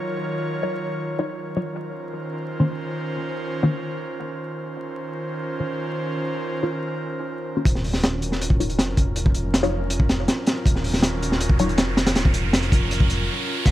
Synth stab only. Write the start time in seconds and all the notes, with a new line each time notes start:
Already playing: F#3 D#4 F4 C#5
0.63 F#3 D#4 F4 C#5
1.19 F#3 D#4 F4 C#5
1.57 F#3 D#4 F4 C#5
2.60 D#3 A#3 C#4 F4 C5
3.63 D#3 A#3 C#4 F4 C5
5.60 D#3 A#3 C#4 F4 C5
6.63 D#3 A#3 C#4 F4 C5
7.56 D#3 A#3 C#4 F4 C5
8.60 F#3 D#4 F4 C#5
9.63 F#3 D#4 F4 C#5
11.60 F#3 D#4 F4 C#5